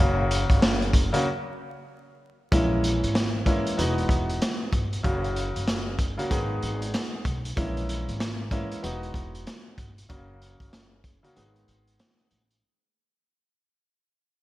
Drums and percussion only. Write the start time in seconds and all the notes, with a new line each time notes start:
0.31 closed hi-hat
0.50 kick, closed hi-hat
0.62 snare
0.82 closed hi-hat
0.93 kick, closed hi-hat
1.14 closed hi-hat
2.52 kick, closed hi-hat
2.84 closed hi-hat
3.04 closed hi-hat
3.15 snare, closed hi-hat
3.46 kick, closed hi-hat
3.67 closed hi-hat
3.79 closed hi-hat
3.98 closed hi-hat
4.09 kick, closed hi-hat
4.29 closed hi-hat
4.42 snare, closed hi-hat
4.73 kick, closed hi-hat
4.93 closed hi-hat
5.04 kick, closed hi-hat
5.24 closed hi-hat
5.36 closed hi-hat
5.56 closed hi-hat
5.68 snare, closed hi-hat
5.99 kick, closed hi-hat
6.19 closed hi-hat
6.31 kick, closed hi-hat
6.62 closed hi-hat
6.82 closed hi-hat
6.94 snare, closed hi-hat
7.25 kick, closed hi-hat
7.45 closed hi-hat
7.57 kick, closed hi-hat
7.77 closed hi-hat
7.89 closed hi-hat
8.09 closed hi-hat
8.20 snare, closed hi-hat
8.51 kick, closed hi-hat
8.72 closed hi-hat
8.84 closed hi-hat
9.03 closed hi-hat
9.14 kick, closed hi-hat
9.35 closed hi-hat
9.47 snare, closed hi-hat
9.78 kick, closed hi-hat
9.98 closed hi-hat
10.10 kick, closed hi-hat
10.42 closed hi-hat
10.60 kick, closed hi-hat
10.73 snare, closed hi-hat
11.04 kick, closed hi-hat
11.24 closed hi-hat
11.36 closed hi-hat
11.56 closed hi-hat
11.68 closed hi-hat
11.87 closed hi-hat
11.99 snare, closed hi-hat
12.19 closed hi-hat
12.31 closed hi-hat
12.51 closed hi-hat